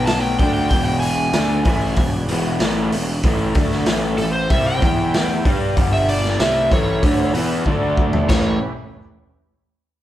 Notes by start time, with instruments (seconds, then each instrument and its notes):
Already playing: picked electric bass B1, overdriven electric guitar B2 F#3 B3, tonewheel organ B3 F#4 B4 F#5
0.06 electric slide guitar A5, snare, open hi-hat
0.21 electric slide guitar G5
0.39 picked electric bass D2, overdriven electric guitar D3 A3 D4, tonewheel organ F#4 G#4 B4 D5, electric slide guitar G5, kick, open hi-hat
0.54 electric slide guitar G5
0.70 picked electric bass E1, overdriven electric guitar E2 B2 E3, electric slide guitar G5, kick, open hi-hat
0.85 electric slide guitar G5
1.00 electric slide guitar G#5, open hi-hat
1.33 picked electric bass D2, overdriven electric guitar D3 A3 D4, snare, open hi-hat
1.65 picked electric bass A1, overdriven electric guitar A2 E3 A3, kick, open hi-hat
1.96 picked electric bass E1, overdriven electric guitar E2 B2, kick, open hi-hat
2.28 picked electric bass E1, overdriven electric guitar E2 B2 E3, open hi-hat
2.60 picked electric bass A1, overdriven electric guitar A2 E3 A3, snare, open hi-hat
2.92 picked electric bass E1, overdriven electric guitar E2 B2, open hi-hat
3.22 picked electric bass A1, overdriven electric guitar A2 E3 A3, tonewheel organ E4 G4 B4 E5, kick, open hi-hat
3.55 picked electric bass D2, overdriven electric guitar D3 A3 D4, kick, open hi-hat
3.72 snare
3.86 picked electric bass A1, overdriven electric guitar A2 E3 A3, snare, open hi-hat
4.18 picked electric bass A1, overdriven electric guitar A2 E3, electric slide guitar A4, open hi-hat
4.33 electric slide guitar C5
4.50 picked electric bass C2, overdriven electric guitar C3 G3 C4, electric slide guitar E5, kick, open hi-hat
4.66 electric slide guitar G5
4.79 picked electric bass E2, overdriven electric guitar E3 B3 E4, tonewheel organ B3 E4 B4 E5, kick, open hi-hat
5.14 snare, open hi-hat
5.45 picked electric bass G2, overdriven electric guitar G3 D4 G4, kick, open hi-hat
5.51 electric slide guitar F5
5.76 picked electric bass G1, overdriven electric guitar G2 D3 G3, tonewheel organ D4 G4 D5 G5, kick, open hi-hat
5.93 electric slide guitar E5
6.09 electric slide guitar D5, open hi-hat
6.25 snare
6.39 picked electric bass C2, overdriven electric guitar C3 G3 C4, tonewheel organ E4 G4 B4 E5, electric slide guitar E5, snare, open hi-hat
6.71 picked electric bass A1, overdriven electric guitar A2 E3 A3, electric slide guitar C#5, kick, open hi-hat
7.03 picked electric bass D2, overdriven electric guitar D3 A3 D4, kick, open hi-hat
7.34 picked electric bass E2, overdriven electric guitar E3 B3 E4, open hi-hat
7.65 picked electric bass D2, overdriven electric guitar D3 A3 D4, tonewheel organ A3 D4 A4 D5, kick
7.97 kick
8.13 floor tom
8.28 picked electric bass A1, overdriven electric guitar A2 E3 A3, tonewheel organ C#4 E4 G4 B4, electric slide guitar C#5, kick, snare, crash